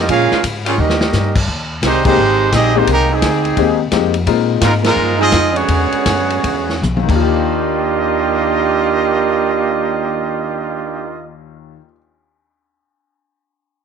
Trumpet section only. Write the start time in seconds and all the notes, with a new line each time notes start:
0.10 C#4 G#4 A#4 F5
0.66 A#3 F4 G#4 C#5
0.79 C#4 G4 A#4 D#5
1.85 G#3 D#4 G4 C5
2.06 G#3 D#4 G4 C5
2.54 C4 G4 G#4 D#5
2.78 G#3 D#4 G4 C5
2.91 G#3 D#4 G4 A#4
3.13 C4 G4 G#4
4.63 G#3 D#4 F4 A#4
4.86 G#3 D#4 F4 A#4
5.20 C4 F4 G#4 D#5
5.55 B3 F#4 G#4 C#5
7.11 A#3 F4 G4 D#5